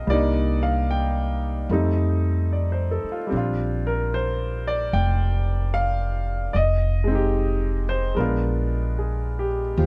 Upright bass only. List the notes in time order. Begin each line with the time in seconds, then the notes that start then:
0.07 C2
1.69 F2
3.04 muted upright bass stroke
3.32 A#1
4.93 F1
6.54 F1
8.17 A#1
9.78 D#2